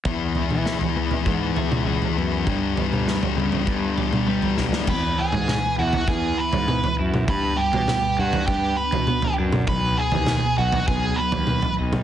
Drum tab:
CC |----------------|----------------|x---------------|----------------|
SD |----o-----------|----o---------oo|----o-----------|----o-----------|
T2 |---o-------o----|---o-------o----|----o-------o--o|----o-------o--o|
FT |o-o--o-o--o--o--|o-o--o-o--o--o--|o--o---o---o-o--|o--o---o---o-o--|
BD |o-------o-------|o-------o-------|o-------o-------|o-------o-------|

CC |----------------|
SD |----o-----------|
T2 |----o-------o--o|
FT |o--o---o---o-o--|
BD |o-------o-------|